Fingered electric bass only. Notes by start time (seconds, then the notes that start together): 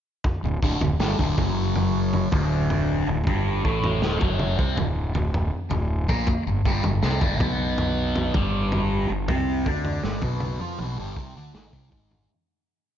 0.44 D1
0.62 D1
0.80 D1
0.99 G1
1.19 D1
1.38 F#1
2.32 D1
3.08 D1
3.27 G1
3.64 A1
4.01 D1
4.21 F#1
4.59 C2
4.77 D1
5.15 D1
5.72 D1
6.09 A#1
6.47 G1
6.65 G1
6.85 G1
7.03 C2
7.22 G1
7.41 B1
8.35 G1
9.09 G1
9.29 C2
9.66 D2
10.04 G1
10.22 B1
10.60 F2
10.79 B1
10.98 G1
11.16 C2
11.35 D2
11.54 G#1
11.73 C2
11.92 G#1